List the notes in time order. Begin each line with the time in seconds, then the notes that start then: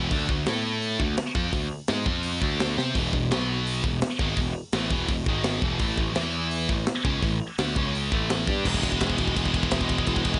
Already playing: E2 B2 E3
0.11 D2 D3 A3 D4, kick, open hi-hat
0.29 D2 D3 A3, kick
0.46 A2 A3 E4 A4, snare, open hi-hat
0.82 open hi-hat
1.00 D2 D3 A3, kick
1.17 snare, open hi-hat
1.35 F2 F3 C4 F4, kick
1.53 D2 D3 A3, kick, open hi-hat
1.88 G#2 G#3 D#4 G#4, snare, open hi-hat
2.06 F2 F3 C4 F4, kick
2.23 open hi-hat
2.41 D2 D3 A3 D4, kick
2.60 snare, open hi-hat
2.77 C3 C4 G4 C5, snare
2.95 E1 E2 B2 E3, kick, open hi-hat
3.13 E1 E2 B2, kick
3.31 B1 B2 F#3 B3, snare, open hi-hat
3.67 open hi-hat
3.84 E1 E2 B2, kick
4.01 snare, open hi-hat
4.19 G#1 G#2 D#3 G#3, kick
4.36 E1 E2 B2, kick, open hi-hat
4.72 A1 A2 E3 A3, snare, open hi-hat
4.91 E1 E2 B2 E3, kick
5.08 E1 E2 B2, kick, open hi-hat
5.26 G#1 G#2 D#3 G#3, kick
5.44 snare, open hi-hat
5.62 E1 E2 B2 E3, kick
5.79 A1 A2 E3 A3, kick, open hi-hat
5.98 A1 A2 E3, kick
6.15 E2 E3 B3 E4, snare, open hi-hat
6.51 open hi-hat
6.69 A1 A2 E3, kick
6.86 snare, open hi-hat
7.05 C#2 C#3 G#3 C#4, kick
7.22 A1 A2 E3, kick, open hi-hat
7.58 D2 D3 A3 D4, snare, open hi-hat
7.76 C#2 C#3 G#3 C#4, kick
7.95 open hi-hat
8.12 A1 A2 E3 A3, kick
8.30 snare, open hi-hat
8.47 G2 G3 D4 G4, kick
8.65 E1 E3 G#3, kick, crash
8.73 E3 G#3, kick
8.80 E3 G#3, kick, ride
8.89 E3 G#3, kick
8.96 E3 G#3
9.01 E1, kick, snare, ride
9.05 E3 G#3
9.10 E3 G#3, kick
9.18 E1 E3 G#3, kick, ride
9.28 E3 G#3, kick
9.36 E1 E3 G#3, kick, ride
9.44 E3 G#3, kick
9.52 E3 G#3, kick, ride
9.60 E3 G#3, kick
9.67 E3 G#3, ride
9.72 E1 E3, kick, snare
9.76 G#3
9.81 E3 G#3, kick
9.89 E1 E3 G#3, kick, ride
9.98 E3 G#3, kick
10.07 E1 E3 G#3, kick, ride
10.16 E3 G#3, kick
10.24 E1 E3 G#3, kick, ride
10.32 E3 G#3, kick